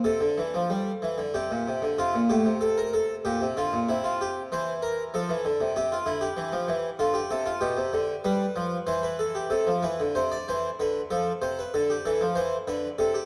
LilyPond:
<<
  \new Staff \with { instrumentName = "Harpsichord" } { \time 3/4 \key c \mixolydian \tempo 4 = 95 a'2 g'4 | f'8 g'8 a'16 bes'16 a'8 g'8 f'8 | e'16 f'16 g'8 c''8 bes'8 a'4 | g'16 f'16 e'16 g'4~ g'16 f'16 g'16 a'16 f'16 |
g'4 b'4 c''16 b'16 a'16 g'16 | a'8 b'8 c''16 d''16 c''8 b'8 a'8 | c''16 b'16 a'16 g'16 a'8 c''8 b'8 a'16 g'16 | }
  \new Staff \with { instrumentName = "Harpsichord" } { \clef bass \time 3/4 \key c \mixolydian c16 d16 e16 f16 g8 e16 d16 c16 bes,16 c16 d16 | c16 bes,16 a,16 c4~ c16 bes,16 c16 d16 bes,16 | c4 e4 f16 e16 d16 c16 | c8 d8 e16 f16 e8 d8 c8 |
b,16 c16 d8 g8 f8 e4 | c16 f16 e16 d16 c8 e8 d8 f8 | c8 d8 e16 f16 e8 d8 c8 | }
>>